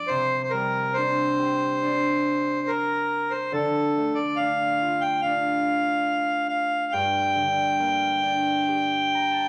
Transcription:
0.00 0.15 G2 soft
0.00 0.15 D3 soft
0.00 0.15 F3 soft
0.00 1.11 A#3 soft
0.00 0.96 D4 soft
0.08 3.57 C3 soft
0.08 0.42 C5 medium
0.43 0.52 C5 soft
0.50 3.57 G3 soft
0.50 0.97 A#4 medium
0.94 1.82 D4 soft
0.94 2.71 C5 medium
1.39 3.75 G4 soft
1.82 4.40 D4 soft
2.67 3.33 A#4 medium
3.31 3.53 C5 medium
3.52 6.98 D3 medium
3.52 4.19 A4 medium
3.97 7.30 A3 soft
4.15 4.38 D5 medium
4.36 5.25 D4 soft
4.36 5.03 F5 medium
4.82 7.34 F4 soft
5.01 5.21 G5 medium
5.22 8.05 D4 soft
5.22 6.47 F5 medium
6.49 6.94 F5 medium
6.92 9.48 G2 soft
6.92 9.48 G5 medium
7.35 9.48 D3 soft
7.80 9.48 A#3 soft
8.23 9.48 D4 soft
8.69 9.48 G4 soft
9.15 9.37 A#5 soft
9.31 9.48 A5 soft

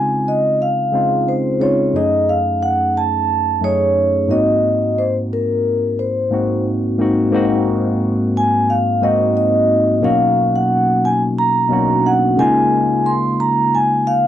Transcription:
0.00 0.35 C#3 medium
0.00 0.35 G#3 medium
0.00 0.36 C4 medium
0.00 0.37 D#4 medium
0.00 0.40 F4 medium
0.00 0.28 G#5 medium
0.28 0.58 D#5 medium
0.62 1.30 F5 medium
0.92 1.48 C#3 medium
0.92 1.49 G#3 medium
0.92 1.49 C4 medium
0.92 1.50 D#4 medium
0.92 1.50 F4 medium
1.28 1.62 C5 medium
1.59 1.88 C#3 medium
1.59 1.89 G#3 soft
1.59 1.89 C4 soft
1.59 1.89 D#4 medium
1.59 1.90 F4 medium
1.59 1.96 C#5 medium
1.93 3.04 F#2 medium
1.93 3.05 A3 medium
1.93 3.05 C#4 medium
1.93 3.06 D#4 medium
1.93 3.06 G#4 medium
1.93 2.30 D#5 medium
2.29 2.63 F5 medium
2.63 2.97 F#5 medium
2.97 3.60 A5 medium
3.61 4.18 F#2 medium
3.61 4.18 A3 medium
3.61 4.19 C#4 medium
3.61 4.19 D#4 medium
3.61 4.20 G#4 medium
3.61 4.33 C#5 medium
4.28 5.40 G#2 medium
4.28 5.40 A#3 medium
4.28 5.41 C4 medium
4.28 5.41 D#4 medium
4.28 5.00 D#5 medium
4.32 5.42 F#4 medium
4.99 5.13 C5 medium
5.33 6.02 A#4 medium
5.99 6.62 C5 medium
6.30 6.87 G#2 medium
6.30 6.87 A#3 medium
6.30 6.88 C4 medium
6.30 6.88 D#4 medium
6.30 6.89 F#4 medium
6.98 7.27 G#2 medium
6.98 7.27 A#3 medium
6.98 7.28 C4 medium
6.98 7.28 D#4 medium
6.98 7.29 F#4 medium
7.31 8.43 G#2 medium
7.31 8.43 A#3 medium
7.31 8.44 C4 medium
7.31 8.44 D#4 medium
7.35 8.45 F#4 medium
8.37 8.70 G#5 medium
8.70 9.04 F5 medium
9.01 9.85 G#2 medium
9.01 9.85 A#3 medium
9.01 9.86 C4 medium
9.01 9.86 D#4 medium
9.01 9.87 F#4 medium
9.01 9.36 D#5 medium
9.37 10.05 D#5 medium
10.01 11.13 B2 medium
10.01 11.13 F#3 medium
10.01 11.13 A#3 medium
10.01 11.13 C#4 medium
10.01 11.14 D#4 medium
10.01 11.14 F#4 medium
10.01 10.57 F5 medium
10.56 11.06 F#5 medium
11.05 11.20 G#5 medium
11.39 12.07 A#5 loud
11.69 12.37 B2 medium
11.69 12.38 F#3 medium
11.69 12.37 A#3 medium
11.69 12.38 C#4 medium
11.69 11.78 D4 soft
11.73 12.39 F#4 medium
11.79 12.38 D#4 medium
12.06 12.40 F#5 medium
12.37 13.48 C#3 medium
12.37 13.49 G#3 medium
12.37 13.49 A#3 medium
12.37 13.49 D#4 medium
12.37 13.50 F4 medium
12.37 13.08 G#5 loud
13.06 13.40 C6 medium
13.40 13.74 A#5 loud
13.75 14.08 G#5 medium
14.07 14.27 F5 loud

